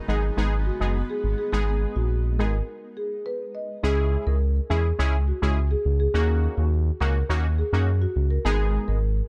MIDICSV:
0, 0, Header, 1, 5, 480
1, 0, Start_track
1, 0, Tempo, 576923
1, 1270, Time_signature, 4, 2, 24, 8
1, 7721, End_track
2, 0, Start_track
2, 0, Title_t, "Marimba"
2, 0, Program_c, 0, 12
2, 69, Note_on_c, 0, 68, 75
2, 153, Note_off_c, 0, 68, 0
2, 550, Note_on_c, 0, 66, 79
2, 634, Note_off_c, 0, 66, 0
2, 912, Note_on_c, 0, 68, 78
2, 995, Note_off_c, 0, 68, 0
2, 1150, Note_on_c, 0, 68, 72
2, 1234, Note_off_c, 0, 68, 0
2, 1269, Note_on_c, 0, 68, 98
2, 1353, Note_off_c, 0, 68, 0
2, 1629, Note_on_c, 0, 66, 77
2, 1713, Note_off_c, 0, 66, 0
2, 1990, Note_on_c, 0, 70, 77
2, 2074, Note_off_c, 0, 70, 0
2, 2470, Note_on_c, 0, 68, 78
2, 2554, Note_off_c, 0, 68, 0
2, 2711, Note_on_c, 0, 71, 83
2, 2795, Note_off_c, 0, 71, 0
2, 2951, Note_on_c, 0, 75, 68
2, 3034, Note_off_c, 0, 75, 0
2, 3192, Note_on_c, 0, 68, 106
2, 3275, Note_off_c, 0, 68, 0
2, 3551, Note_on_c, 0, 70, 78
2, 3634, Note_off_c, 0, 70, 0
2, 3912, Note_on_c, 0, 68, 77
2, 3995, Note_off_c, 0, 68, 0
2, 4392, Note_on_c, 0, 66, 68
2, 4475, Note_off_c, 0, 66, 0
2, 4750, Note_on_c, 0, 68, 81
2, 4834, Note_off_c, 0, 68, 0
2, 4991, Note_on_c, 0, 68, 80
2, 5075, Note_off_c, 0, 68, 0
2, 5112, Note_on_c, 0, 68, 92
2, 5195, Note_off_c, 0, 68, 0
2, 5470, Note_on_c, 0, 66, 72
2, 5554, Note_off_c, 0, 66, 0
2, 5828, Note_on_c, 0, 70, 96
2, 5913, Note_off_c, 0, 70, 0
2, 6310, Note_on_c, 0, 68, 76
2, 6394, Note_off_c, 0, 68, 0
2, 6670, Note_on_c, 0, 66, 80
2, 6754, Note_off_c, 0, 66, 0
2, 6910, Note_on_c, 0, 70, 82
2, 6994, Note_off_c, 0, 70, 0
2, 7030, Note_on_c, 0, 68, 92
2, 7114, Note_off_c, 0, 68, 0
2, 7388, Note_on_c, 0, 70, 77
2, 7473, Note_off_c, 0, 70, 0
2, 7721, End_track
3, 0, Start_track
3, 0, Title_t, "Synth stab"
3, 0, Program_c, 1, 62
3, 67, Note_on_c, 1, 56, 79
3, 68, Note_on_c, 1, 59, 72
3, 71, Note_on_c, 1, 63, 73
3, 71, Note_on_c, 1, 68, 86
3, 210, Note_off_c, 1, 56, 0
3, 210, Note_off_c, 1, 59, 0
3, 211, Note_off_c, 1, 63, 0
3, 212, Note_off_c, 1, 68, 0
3, 309, Note_on_c, 1, 56, 96
3, 310, Note_on_c, 1, 59, 84
3, 311, Note_on_c, 1, 63, 85
3, 313, Note_on_c, 1, 68, 101
3, 450, Note_off_c, 1, 56, 0
3, 451, Note_off_c, 1, 59, 0
3, 452, Note_off_c, 1, 63, 0
3, 453, Note_off_c, 1, 68, 0
3, 668, Note_on_c, 1, 56, 77
3, 670, Note_on_c, 1, 59, 71
3, 672, Note_on_c, 1, 63, 68
3, 673, Note_on_c, 1, 68, 81
3, 810, Note_off_c, 1, 56, 0
3, 811, Note_off_c, 1, 59, 0
3, 812, Note_off_c, 1, 63, 0
3, 813, Note_off_c, 1, 68, 0
3, 1267, Note_on_c, 1, 56, 91
3, 1269, Note_on_c, 1, 59, 87
3, 1271, Note_on_c, 1, 63, 84
3, 1272, Note_on_c, 1, 68, 104
3, 1710, Note_off_c, 1, 56, 0
3, 1711, Note_off_c, 1, 59, 0
3, 1712, Note_off_c, 1, 63, 0
3, 1713, Note_off_c, 1, 68, 0
3, 1987, Note_on_c, 1, 56, 79
3, 1988, Note_on_c, 1, 59, 69
3, 1990, Note_on_c, 1, 63, 70
3, 1992, Note_on_c, 1, 68, 86
3, 2129, Note_off_c, 1, 56, 0
3, 2130, Note_off_c, 1, 59, 0
3, 2131, Note_off_c, 1, 63, 0
3, 2132, Note_off_c, 1, 68, 0
3, 3187, Note_on_c, 1, 56, 95
3, 3189, Note_on_c, 1, 61, 85
3, 3191, Note_on_c, 1, 64, 85
3, 3192, Note_on_c, 1, 68, 105
3, 3630, Note_off_c, 1, 56, 0
3, 3631, Note_off_c, 1, 61, 0
3, 3632, Note_off_c, 1, 64, 0
3, 3633, Note_off_c, 1, 68, 0
3, 3908, Note_on_c, 1, 56, 78
3, 3909, Note_on_c, 1, 61, 73
3, 3911, Note_on_c, 1, 64, 77
3, 3912, Note_on_c, 1, 68, 88
3, 4050, Note_off_c, 1, 56, 0
3, 4051, Note_off_c, 1, 61, 0
3, 4051, Note_off_c, 1, 64, 0
3, 4052, Note_off_c, 1, 68, 0
3, 4148, Note_on_c, 1, 56, 100
3, 4151, Note_on_c, 1, 61, 89
3, 4152, Note_on_c, 1, 64, 90
3, 4154, Note_on_c, 1, 68, 104
3, 4290, Note_off_c, 1, 56, 0
3, 4292, Note_off_c, 1, 61, 0
3, 4292, Note_off_c, 1, 64, 0
3, 4293, Note_off_c, 1, 68, 0
3, 4508, Note_on_c, 1, 56, 81
3, 4510, Note_on_c, 1, 61, 72
3, 4511, Note_on_c, 1, 64, 74
3, 4513, Note_on_c, 1, 68, 93
3, 4650, Note_off_c, 1, 56, 0
3, 4651, Note_off_c, 1, 61, 0
3, 4652, Note_off_c, 1, 64, 0
3, 4653, Note_off_c, 1, 68, 0
3, 5107, Note_on_c, 1, 58, 95
3, 5109, Note_on_c, 1, 61, 87
3, 5111, Note_on_c, 1, 63, 84
3, 5113, Note_on_c, 1, 66, 103
3, 5550, Note_off_c, 1, 58, 0
3, 5551, Note_off_c, 1, 61, 0
3, 5552, Note_off_c, 1, 63, 0
3, 5553, Note_off_c, 1, 66, 0
3, 5827, Note_on_c, 1, 58, 81
3, 5828, Note_on_c, 1, 61, 77
3, 5830, Note_on_c, 1, 63, 75
3, 5832, Note_on_c, 1, 66, 93
3, 5970, Note_off_c, 1, 58, 0
3, 5970, Note_off_c, 1, 61, 0
3, 5971, Note_off_c, 1, 63, 0
3, 5972, Note_off_c, 1, 66, 0
3, 6067, Note_on_c, 1, 58, 99
3, 6069, Note_on_c, 1, 61, 92
3, 6071, Note_on_c, 1, 63, 93
3, 6073, Note_on_c, 1, 66, 107
3, 6210, Note_off_c, 1, 58, 0
3, 6211, Note_off_c, 1, 61, 0
3, 6212, Note_off_c, 1, 63, 0
3, 6213, Note_off_c, 1, 66, 0
3, 6428, Note_on_c, 1, 58, 79
3, 6430, Note_on_c, 1, 61, 77
3, 6431, Note_on_c, 1, 63, 77
3, 6433, Note_on_c, 1, 66, 88
3, 6570, Note_off_c, 1, 58, 0
3, 6571, Note_off_c, 1, 61, 0
3, 6572, Note_off_c, 1, 63, 0
3, 6573, Note_off_c, 1, 66, 0
3, 7028, Note_on_c, 1, 56, 99
3, 7029, Note_on_c, 1, 59, 89
3, 7031, Note_on_c, 1, 63, 88
3, 7033, Note_on_c, 1, 68, 107
3, 7471, Note_off_c, 1, 56, 0
3, 7471, Note_off_c, 1, 59, 0
3, 7472, Note_off_c, 1, 63, 0
3, 7473, Note_off_c, 1, 68, 0
3, 7721, End_track
4, 0, Start_track
4, 0, Title_t, "Ambient pad"
4, 0, Program_c, 2, 92
4, 0, Note_on_c, 2, 56, 74
4, 0, Note_on_c, 2, 59, 79
4, 0, Note_on_c, 2, 63, 88
4, 2197, Note_off_c, 2, 63, 0
4, 2201, Note_off_c, 2, 56, 0
4, 2201, Note_off_c, 2, 59, 0
4, 7721, End_track
5, 0, Start_track
5, 0, Title_t, "Analog synth bass"
5, 0, Program_c, 3, 38
5, 68, Note_on_c, 3, 32, 86
5, 255, Note_off_c, 3, 32, 0
5, 310, Note_on_c, 3, 32, 105
5, 588, Note_off_c, 3, 32, 0
5, 668, Note_on_c, 3, 30, 89
5, 854, Note_off_c, 3, 30, 0
5, 1030, Note_on_c, 3, 32, 94
5, 1123, Note_off_c, 3, 32, 0
5, 1270, Note_on_c, 3, 32, 98
5, 1548, Note_off_c, 3, 32, 0
5, 1630, Note_on_c, 3, 34, 90
5, 1989, Note_on_c, 3, 32, 103
5, 2002, Note_off_c, 3, 34, 0
5, 2175, Note_off_c, 3, 32, 0
5, 3191, Note_on_c, 3, 37, 102
5, 3469, Note_off_c, 3, 37, 0
5, 3551, Note_on_c, 3, 37, 106
5, 3829, Note_off_c, 3, 37, 0
5, 3912, Note_on_c, 3, 40, 100
5, 4097, Note_off_c, 3, 40, 0
5, 4152, Note_on_c, 3, 37, 98
5, 4430, Note_off_c, 3, 37, 0
5, 4511, Note_on_c, 3, 37, 96
5, 4789, Note_off_c, 3, 37, 0
5, 4871, Note_on_c, 3, 37, 101
5, 5056, Note_off_c, 3, 37, 0
5, 5110, Note_on_c, 3, 39, 114
5, 5388, Note_off_c, 3, 39, 0
5, 5471, Note_on_c, 3, 39, 106
5, 5749, Note_off_c, 3, 39, 0
5, 5830, Note_on_c, 3, 37, 90
5, 6016, Note_off_c, 3, 37, 0
5, 6069, Note_on_c, 3, 39, 101
5, 6348, Note_off_c, 3, 39, 0
5, 6428, Note_on_c, 3, 42, 100
5, 6707, Note_off_c, 3, 42, 0
5, 6790, Note_on_c, 3, 37, 93
5, 6975, Note_off_c, 3, 37, 0
5, 7029, Note_on_c, 3, 32, 105
5, 7308, Note_off_c, 3, 32, 0
5, 7390, Note_on_c, 3, 32, 109
5, 7668, Note_off_c, 3, 32, 0
5, 7721, End_track
0, 0, End_of_file